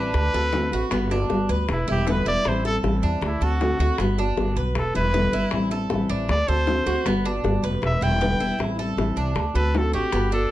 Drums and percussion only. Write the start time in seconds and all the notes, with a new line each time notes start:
0.14 high bongo
0.34 high bongo
0.53 high bongo, low bongo
0.72 high bongo
0.91 high bongo
1.10 high bongo
1.30 high bongo
1.69 high bongo
1.88 high bongo
2.07 high bongo, low bongo
2.26 high bongo
2.45 high bongo
2.65 high bongo
2.84 high bongo
3.22 high bongo
3.42 high bongo
3.61 high bongo, low bongo
3.79 high bongo
3.98 high bongo
4.18 high bongo
4.37 high bongo
4.75 high bongo
4.95 high bongo
5.14 high bongo, low bongo
5.33 high bongo
5.51 high bongo
5.71 high bongo
5.90 high bongo
6.29 high bongo
6.48 high bongo
6.67 high bongo, low bongo
6.86 high bongo
7.06 high bongo
7.25 high bongo
7.45 high bongo
7.83 high bongo
8.02 high bongo
8.22 high bongo, low bongo
8.41 high bongo
8.60 high bongo
8.79 high bongo
8.98 high bongo
9.36 high bongo
9.55 high bongo
9.75 high bongo, low bongo
9.93 high bongo
10.12 high bongo
10.32 high bongo